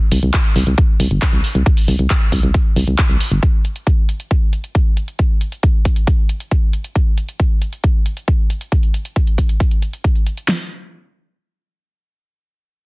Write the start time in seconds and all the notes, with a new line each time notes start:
0.12 C2, open hi-hat
0.23 C2, closed hi-hat
0.34 kick, clap, closed hi-hat
0.56 C2, open hi-hat
0.67 C2, closed hi-hat
0.78 kick, closed hi-hat
1.00 C2, open hi-hat
1.11 G1, closed hi-hat
1.22 kick, clap, closed hi-hat
1.33 C2
1.44 open hi-hat
1.55 C2, closed hi-hat
1.66 kick, closed hi-hat
1.77 open hi-hat
1.88 C2, open hi-hat
1.99 C2, closed hi-hat
2.10 kick, clap, closed hi-hat
2.32 C2, kick, open hi-hat
2.43 C2, closed hi-hat
2.54 kick, closed hi-hat
2.76 C2, open hi-hat
2.87 C2, closed hi-hat
2.98 kick, clap, closed hi-hat
3.10 C2
3.21 open hi-hat
3.32 G1, closed hi-hat
3.43 kick, closed hi-hat
3.65 closed hi-hat
3.76 closed hi-hat
3.87 kick, closed hi-hat
4.09 closed hi-hat
4.20 closed hi-hat
4.31 kick, closed hi-hat
4.53 closed hi-hat
4.64 closed hi-hat
4.75 kick, closed hi-hat
4.97 closed hi-hat
5.08 closed hi-hat
5.19 kick, closed hi-hat
5.41 closed hi-hat
5.52 closed hi-hat
5.63 kick, closed hi-hat
5.85 kick, closed hi-hat
5.96 closed hi-hat
6.07 kick, closed hi-hat
6.29 closed hi-hat
6.40 closed hi-hat
6.51 kick, closed hi-hat
6.73 closed hi-hat
6.84 closed hi-hat
6.96 kick, closed hi-hat
7.18 closed hi-hat
7.29 closed hi-hat
7.40 kick, closed hi-hat
7.62 closed hi-hat
7.73 closed hi-hat
7.84 kick, closed hi-hat
8.06 closed hi-hat
8.17 closed hi-hat
8.28 kick, closed hi-hat
8.50 closed hi-hat
8.61 closed hi-hat
8.72 kick, closed hi-hat
8.83 closed hi-hat
8.94 closed hi-hat
9.05 closed hi-hat
9.16 kick, closed hi-hat
9.27 closed hi-hat
9.38 kick, closed hi-hat
9.49 closed hi-hat
9.60 kick, closed hi-hat
9.71 closed hi-hat
9.82 closed hi-hat
9.93 closed hi-hat
10.04 kick, closed hi-hat
10.15 closed hi-hat
10.27 closed hi-hat
10.37 closed hi-hat
10.48 snare, open hi-hat